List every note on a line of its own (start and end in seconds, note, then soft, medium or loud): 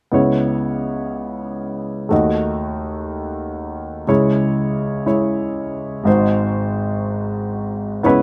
0.11 2.07 C#2 soft
0.11 2.07 C#3 soft
0.11 2.07 B3 soft
0.11 2.07 E4 soft
0.11 2.08 C#5 soft
2.09 4.05 D#2 soft
2.09 4.05 D#3 soft
2.09 4.04 A3 soft
2.09 4.05 F#4 soft
2.09 4.06 D#5 soft
4.07 6.02 C#2 soft
4.07 6.03 C#3 soft
4.07 5.05 G#3 soft
4.07 5.05 E4 soft
4.07 5.06 C#5 medium
5.06 6.02 G#3 soft
5.06 6.06 E4 soft
5.06 6.07 C#5 soft
6.03 8.00 G#1 soft
6.03 8.00 G#2 soft
6.03 7.99 G#3 soft
6.03 8.00 F#4 soft
6.03 8.01 C5 soft
8.03 8.22 C#2 soft
8.03 8.22 C#3 soft
8.03 8.22 B3 soft
8.03 8.06 E4 soft
8.03 8.22 B4 medium
8.03 8.22 C#5 soft
8.07 8.22 E4 soft